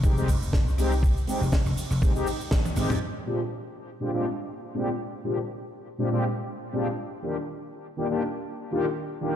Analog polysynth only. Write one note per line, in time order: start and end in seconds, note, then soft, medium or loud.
0.03 0.14 G#3 medium
0.03 0.14 C4 medium
0.03 0.14 D#4 medium
0.03 0.14 G4 loud
0.17 0.29 G#3 loud
0.17 0.29 C4 medium
0.17 0.29 D#4 medium
0.17 0.29 G4 loud
0.78 0.92 G#3 loud
0.78 0.92 C4 medium
0.78 0.92 D#4 medium
0.78 0.92 G4 loud
1.27 1.41 G#3 medium
1.27 1.42 C4 medium
1.27 1.42 D#4 medium
1.27 1.42 G4 medium
2.02 2.12 G#3 medium
2.02 2.12 C4 medium
2.02 2.12 D#4 medium
2.02 2.13 G4 loud
2.15 2.27 G#3 medium
2.15 2.27 C4 medium
2.15 2.28 D#4 medium
2.15 2.28 G4 loud
2.76 2.90 G#3 loud
2.76 2.90 C4 medium
2.76 2.91 D#4 medium
2.76 2.91 G4 loud
3.25 3.40 A#2 medium
3.25 3.40 G#3 medium
3.25 3.40 C4 medium
3.25 3.40 D4 medium
3.25 3.40 F4 medium
3.25 3.40 G4 medium
4.00 4.10 A#2 medium
4.00 4.10 G#3 medium
4.00 4.11 C4 medium
4.00 4.11 D4 medium
4.00 4.11 F4 medium
4.00 4.11 G4 loud
4.13 4.26 A#2 loud
4.13 4.26 G#3 medium
4.13 4.26 C4 medium
4.13 4.26 D4 medium
4.13 4.26 F4 medium
4.13 4.26 G4 loud
4.74 4.88 A#2 medium
4.74 4.89 G#3 medium
4.74 4.89 C4 medium
4.74 4.89 D4 medium
4.74 4.89 F4 medium
4.74 4.89 G4 loud
5.24 5.38 A#2 medium
5.24 5.38 G#3 medium
5.24 5.38 C4 medium
5.24 5.38 D4 medium
5.24 5.38 F4 medium
5.24 5.38 G4 medium
5.98 6.09 A#2 medium
5.98 6.09 G#3 medium
5.98 6.09 C4 medium
5.98 6.09 D4 medium
5.98 6.09 F4 medium
5.98 6.09 G4 loud
6.12 6.24 A#2 medium
6.12 6.24 G#3 medium
6.12 6.24 C4 medium
6.12 6.24 D4 medium
6.12 6.24 F4 medium
6.12 6.24 G4 loud
6.73 6.87 A#2 medium
6.73 6.87 G#3 medium
6.73 6.87 C4 medium
6.73 6.87 D4 medium
6.73 6.87 F4 medium
6.73 6.87 G4 loud
7.22 7.36 D#3 medium
7.22 7.36 A#3 medium
7.22 7.37 D4 medium
7.22 7.37 F4 medium
7.22 7.37 G4 medium
7.97 8.07 D#3 medium
7.97 8.07 A#3 medium
7.97 8.07 D4 medium
7.97 8.07 F4 medium
7.97 8.08 G4 loud
8.10 8.22 D#3 medium
8.10 8.22 A#3 medium
8.10 8.22 D4 medium
8.10 8.23 F4 medium
8.10 8.23 G4 loud
8.71 8.85 D#3 medium
8.71 8.85 A#3 medium
8.71 8.85 D4 medium
8.71 8.85 F4 medium
8.71 8.86 G4 loud
9.20 9.35 D#3 medium
9.20 9.35 A#3 medium
9.20 9.35 D4 medium
9.20 9.35 F4 medium
9.20 9.35 G4 medium